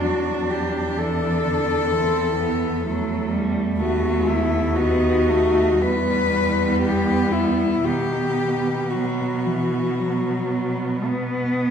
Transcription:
0.00 3.76 E2 soft
0.00 0.97 F#3 soft
0.00 1.92 D4 soft
0.00 0.52 F#4 soft
0.50 1.00 G4 medium
0.99 1.46 E3 soft
0.99 3.32 A4 medium
1.44 1.93 D3 soft
1.91 2.85 E3 soft
1.91 2.38 C4 soft
2.38 2.84 B3 soft
2.85 3.33 F#3 soft
2.85 3.82 A3 soft
3.31 3.81 G3 soft
3.79 5.83 D#2 soft
3.79 4.78 A3 soft
3.79 4.77 B3 soft
3.79 4.29 F#4 medium
4.28 4.78 E4 medium
4.75 5.31 B3 soft
4.75 5.82 D#4 soft
4.75 5.84 F#4 medium
5.29 5.82 A3 medium
5.81 7.84 E2 medium
5.81 7.82 G3 soft
5.81 6.30 B3 soft
5.81 6.81 B4 medium
6.31 7.82 B3 medium
6.82 7.33 G4 medium
7.32 7.87 E4 medium
7.85 11.71 B2 soft
7.85 8.78 D#3 soft
7.85 11.71 B3 soft
7.85 8.92 G4 medium
8.91 9.46 F#3 soft
8.91 11.06 F#4 soft
9.45 10.01 E3 soft
9.99 11.08 F#3 soft
11.06 11.71 B3 medium

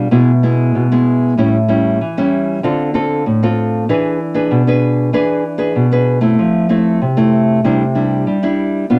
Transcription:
0.11 0.71 B2 medium
0.11 0.30 G#3 medium
0.11 0.30 B3 medium
0.11 0.31 E4 medium
0.43 0.85 G#3 medium
0.43 0.85 B3 medium
0.43 0.86 E4 medium
0.75 1.35 B2 medium
0.92 1.33 G#3 medium
0.92 1.33 B3 medium
0.92 1.33 E4 medium
1.37 1.97 A2 medium
1.37 1.56 G3 medium
1.37 1.56 C#4 medium
1.37 1.57 E4 medium
1.68 1.98 G3 medium
1.68 1.98 C#4 medium
1.68 1.99 E4 medium
2.01 2.60 E3 medium
2.17 2.59 G3 medium
2.17 2.59 C#4 medium
2.17 2.59 E4 medium
2.63 3.23 D3 medium
2.63 2.90 C4 medium
2.63 2.90 F4 medium
2.63 2.90 A4 medium
2.94 3.24 C4 medium
2.94 3.24 F4 medium
2.94 3.24 A4 medium
3.26 3.85 A2 medium
3.43 3.84 C4 medium
3.43 3.84 F4 medium
3.43 3.84 A4 medium
3.89 4.48 E3 medium
3.89 4.18 D4 medium
3.89 4.18 G#4 medium
3.89 4.18 B4 medium
4.34 4.61 D4 medium
4.34 4.61 G#4 soft
4.34 4.62 B4 medium
4.51 5.10 B2 medium
4.67 5.09 D4 medium
4.67 5.09 G#4 medium
4.67 5.09 B4 medium
5.13 5.73 E3 medium
5.13 5.43 D4 medium
5.13 5.43 G#4 medium
5.13 5.43 B4 medium
5.58 5.85 D4 medium
5.58 5.86 G#4 medium
5.58 5.86 B4 medium
5.76 6.35 B2 medium
5.92 6.18 D4 medium
5.92 6.18 G#4 medium
5.92 6.18 B4 medium
6.21 6.68 A3 medium
6.21 6.69 C4 medium
6.21 6.69 E4 medium
6.39 6.98 F3 medium
6.69 6.99 A3 medium
6.69 6.99 C4 medium
6.69 6.99 E4 medium
7.02 7.61 C3 medium
7.17 7.59 A3 medium
7.17 7.59 C4 medium
7.17 7.59 E4 medium
7.64 8.24 C3 medium
7.64 7.82 G3 medium
7.64 7.83 D4 medium
7.64 7.83 E4 medium
7.95 8.26 G3 soft
7.95 8.37 D4 medium
7.95 8.37 E4 medium
8.27 8.42 G3 medium
8.43 8.84 G3 medium
8.43 8.84 D4 medium
8.43 8.85 E4 medium
8.90 8.99 B2 medium
8.90 8.99 B3 medium
8.90 8.99 D4 medium
8.90 8.99 F4 medium

